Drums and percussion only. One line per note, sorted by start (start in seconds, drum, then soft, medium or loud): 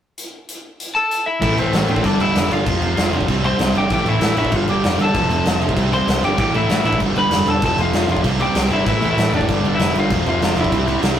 0.18 closed hi-hat medium
0.49 closed hi-hat medium
0.80 closed hi-hat medium
1.11 closed hi-hat medium
1.42 kick loud
1.42 crash medium
1.58 crash medium
1.73 snare loud
1.73 crash medium
1.88 crash medium
1.96 kick medium
2.04 kick medium
2.04 crash medium
2.20 crash medium
2.35 snare loud
2.35 crash medium
2.51 crash medium
2.66 kick loud
2.66 crash medium
2.82 crash medium
2.97 snare loud
2.97 crash medium
3.13 crash medium
3.21 kick medium
3.28 kick medium
3.28 crash medium
3.44 crash medium
3.59 snare loud
3.59 crash medium
3.75 crash medium
3.90 kick loud
3.90 crash medium
4.06 crash medium
4.21 snare loud
4.21 crash medium
4.37 crash medium
4.45 kick medium
4.52 kick medium
4.52 crash medium
4.68 crash medium
4.84 snare loud
4.84 crash medium
4.99 crash medium
5.15 kick loud
5.15 crash medium
5.30 crash medium
5.46 snare loud
5.46 crash medium
5.61 crash medium
5.69 kick medium
5.77 kick loud
5.77 crash medium
5.93 crash medium
6.08 snare loud
6.08 crash medium
6.24 crash medium
6.38 kick loud
6.38 crash medium
6.54 crash medium
6.69 snare loud
6.69 crash medium
6.85 crash medium
6.93 kick medium
7.00 kick loud
7.00 crash medium
7.16 crash medium
7.31 snare loud
7.31 crash medium
7.47 crash medium
7.62 kick loud
7.62 crash medium
7.78 crash medium
7.93 snare loud
7.93 crash medium
8.09 crash medium
8.17 kick medium
8.24 kick loud
8.24 crash medium
8.40 crash medium
8.55 snare loud
8.55 crash medium
8.71 crash medium
8.86 kick loud
8.86 crash medium
9.02 crash medium
9.18 snare loud
9.18 crash medium
9.33 crash medium
9.41 kick medium
9.49 kick medium
9.49 crash medium
9.65 crash medium
9.79 snare loud
9.79 crash medium
9.95 crash medium
10.11 kick loud
10.11 crash medium
10.26 crash medium
10.42 snare loud
10.42 crash medium
10.57 crash medium
10.64 kick medium
10.72 kick loud
10.72 crash medium
10.88 crash medium
11.03 snare loud
11.03 crash medium